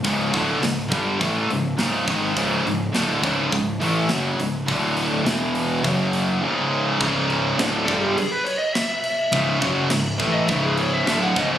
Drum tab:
CC |--------|--------|--------|xxxxxxxx|
HH |oooooooo|oooooooo|oooooo--|--------|
SD |--o---o-|--o---o-|--o-----|--o---o-|
BD |oo-oo--o|o--oo---|o---o---|o--o----|

CC |xxxxxxxx|
HH |--------|
SD |--o---o-|
BD |oo-oo--o|